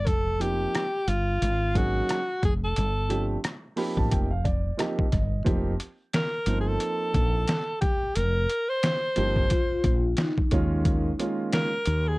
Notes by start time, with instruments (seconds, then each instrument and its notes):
0.07 fretless electric bass F1, alto saxophone A4, kick, closed hi-hat
0.39 grand piano F3 A#3 C4 D#4 G4, alto saxophone G4, closed hi-hat
0.75 cross-stick, closed hi-hat
1.08 fretless electric bass G1, alto saxophone F4, closed hi-hat
1.42 fretless electric bass G#1, closed hi-hat
1.75 grand piano F#3 A#3 C#4 D#4 G#4, alto saxophone F#4, kick, closed hi-hat
2.09 cross-stick, closed hi-hat
2.43 fretless electric bass F1, alto saxophone G#4, kick, closed hi-hat
2.64 alto saxophone A4
2.76 fretless electric bass G1, closed hi-hat
3.09 grand piano F3 A3 C4 D4 G4, closed hi-hat
3.44 cross-stick, closed hi-hat
3.76 grand piano F3 A#3 C4 D#4 G4 B5, open hi-hat
3.97 fretless electric bass A1, grand piano A5, kick
4.11 fretless electric bass F1, grand piano G5, kick, closed hi-hat
4.30 grand piano F5
4.44 grand piano D5, kick, closed hi-hat
4.77 grand piano F3 A#3 C4 D#4 G4 D#5, cross-stick, closed hi-hat
4.99 kick
5.12 fretless electric bass G1, grand piano D#5, kick, cross-stick, closed hi-hat
5.44 fretless electric bass F1, grand piano F3 A#3 C4 D#4 G4, kick, closed hi-hat
5.80 closed hi-hat
6.14 alto saxophone A#4, snare, closed hi-hat
6.46 fretless electric bass G1, grand piano F3 A#3 C4 D#4 C5, closed hi-hat
6.61 alto saxophone G#4
6.68 alto saxophone A4
6.80 closed hi-hat
7.14 fretless electric bass A#1, kick, closed hi-hat
7.48 snare, closed hi-hat
7.81 alto saxophone G4, kick, closed hi-hat
8.15 fretless electric bass F1, alto saxophone A#4, closed hi-hat
8.50 closed hi-hat
8.69 alto saxophone C5
8.83 snare, closed hi-hat
9.16 fretless electric bass G1, grand piano F3 A#3 C4 D#4 G4, closed hi-hat
9.36 kick
9.49 vibraphone F4, kick, closed hi-hat
9.84 fretless electric bass A#1, kick, closed hi-hat
10.17 vibraphone D#4, snare, closed hi-hat
10.38 kick
10.51 fretless electric bass D#2, grand piano D#3 G#3 A#3 C#4 F4, kick, closed hi-hat
10.85 kick, closed hi-hat
11.19 grand piano D#3 G#3 A#3 C#4 F4, closed hi-hat
11.53 alto saxophone A#4, snare, closed hi-hat
11.86 fretless electric bass D#2, closed hi-hat
12.08 alto saxophone G#4